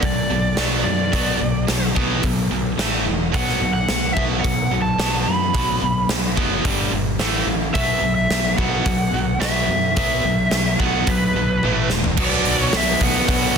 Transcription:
0.00 B1 B2 F#3 D5, kick, open hi-hat
0.30 B1 B2 F#3
0.57 B1 B2 F#3 B3, snare, open hi-hat
0.83 F#2 B2 F#3 D5
1.12 B1 B2 F#3 B3, kick, open hi-hat
1.38 B1 B2 F#3
1.67 B1 B2 F#3, snare, open hi-hat
1.95 B1 B2 F#3 B3, kick
2.23 B1 B2 F#3, kick, open hi-hat
2.51 B1 B2 F#3
2.78 A1 A2 E3 A3, snare, open hi-hat
3.06 E1 A2 E3
3.32 B1 B2 F#3 B3 F#5, kick, open hi-hat
3.49 snare
3.61 B1 B2 F#3
3.73 F#5
3.89 B1 B2 F#3, snare, open hi-hat
4.14 B1 B2 F#3 B3 E5, kick
4.41 B1 F#3 F#5, kick
4.45 B2, open hi-hat
4.71 B1 B2 F#3
4.82 A5
4.98 B1 B2 F#3 B3, snare, open hi-hat
5.23 F#2 B2 B5
5.28 F#3
5.54 B1 B2 F#3 B3, kick, open hi-hat
5.82 B1 B2 F#3
6.09 B1 B2 F#3, snare, open hi-hat
6.36 F#1 B2 F#3 B3, kick
6.63 G1 G2 D3 G3, kick, open hi-hat
6.92 G1 G2 D3
7.19 A1 A2 E3 A3, snare, open hi-hat
7.46 A1 A2 E3
7.73 B1 B2 F#3 B3 E5, kick, open hi-hat
8.01 B1 B2 F#3
8.15 E5
8.30 B1 B2 F#3, snare, open hi-hat
8.57 B1 B2 F#3 B3 F#5, kick
8.86 B1 B2 F#3, kick, open hi-hat
9.13 B1 B2 F#3
9.40 B1 B2 F#3 B3 E5, snare, open hi-hat
9.68 F#2 B2 F#3
9.96 B1 B2 F#3 B3 E5, kick, open hi-hat
10.24 B1 B2 F#3
10.51 B1 B2 F#3, snare, open hi-hat
10.79 B1 B2 F#3 B3 F#5, kick
11.07 B1 B2 F#3 B4, kick, open hi-hat
11.35 B1 B2 F#3
11.63 A1 A2 E3 A3, high tom
11.90 E1 A2 E3, snare
12.04 floor tom
12.17 B1 B2 F#3 B3 D4 F#4 D5, kick, crash
12.21 B3 F#4 D5
12.32 snare
12.45 B1, open hi-hat
12.59 C#5
12.73 B1 E5, snare, open hi-hat
13.00 B1 F#3 B3 F#5, kick, open hi-hat
13.04 B2
13.28 B1 F#5, kick, open hi-hat

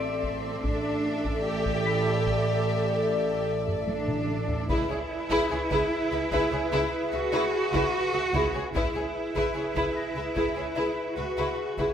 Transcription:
Already playing: A1 C4 A4 D5 E5 C6 D7
0.23 taiko
0.63 A1 D4 A4 D5 E5, taiko
1.25 taiko
1.45 G4
1.65 taiko
1.85 B5 B6
2.25 taiko
3.68 taiko low-mid
3.87 D4, taiko high
4.08 taiko mid
4.28 taiko mid
4.48 taiko low
4.68 C#2 E4 G#4 B4 E5, taiko
4.89 C#2 G#4 C#5
5.29 C#2 E4 G#4 B4, taiko
5.51 C#2 G#4 C#5
5.70 C#2 E4 G#4 B4, taiko
6.12 C#2 G#4 B4 E5
6.31 C#2 E4 G#4 B4, taiko
6.52 C#2 G#4 C#5
6.72 C#2 E4 G#4 B4
7.12 C#2 F#4 G#4 B4 E5
7.32 C#2 E4 G#4 B4
7.72 C#2 E4 G#4 B4, taiko
8.13 C#2 G#4 B4 E5
8.33 C#2 E4 G#4 B4, taiko
8.54 C#2 G#4 C#5
8.74 C#2 E4 G#4 B4 E5, taiko
8.94 C#2 G#4 C#5
9.35 C#2 E4 G#4 B4, taiko
9.55 C#2 G#4 C#5
9.75 C#2 E4 G#4 B4, taiko
9.96 A#6
10.15 C#2 G#4 B4 E5
10.35 C#2 E4 G#4 B4, taiko
10.56 C#2 G#4 C#5
10.76 C#2 E4 G#4 B4
11.16 C#2 F#4 G#4 B4 E5
11.37 C#2 E4 G#4 B4
11.78 C#2 E4 G#4 B4, taiko

